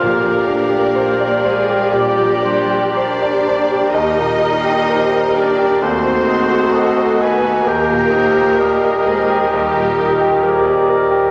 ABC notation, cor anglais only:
X:1
M:4/4
L:1/8
Q:1/4=64
K:Eb
V:1 name="Cor anglais"
f4 d c B2- | B4 c2 e a | g2 e3 z d2 |]